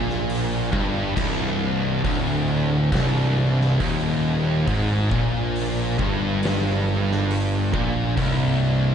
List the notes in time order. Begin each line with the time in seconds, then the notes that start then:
Already playing: A#1 A#2
0.10 snare
0.30 open hi-hat
0.72 G1 G2, kick
1.17 C1 C2, kick, crash
2.04 D1 D2, kick, open hi-hat
2.92 C1 C2, kick, snare, open hi-hat
3.61 snare
3.80 D#1 D#2, kick, open hi-hat
4.67 G#1 G#2, kick, open hi-hat
5.11 A#1 A#2, kick
5.56 open hi-hat
5.99 G1 G2, kick
6.43 snare, open hi-hat
7.11 snare
7.31 open hi-hat
7.73 A#1 A#2, kick
8.17 C1 C2, kick, open hi-hat